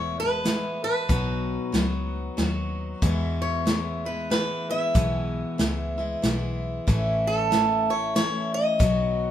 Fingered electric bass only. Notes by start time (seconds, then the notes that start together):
Already playing: E1
1.09 B1
1.73 C#2
2.38 D#2
3.02 E2
4.95 B1
5.59 C#2
6.23 B1
6.88 A1
8.80 B1